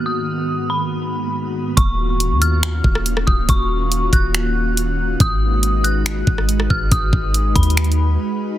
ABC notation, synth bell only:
X:1
M:4/4
L:1/8
Q:1/4=140
K:D#m
V:1 name="Synth bell"
d'3 b3 z2 | c'3 e'4 d' | c'3 f'4- f' | d'3 f'4 e' |
d'3 b3 z2 |]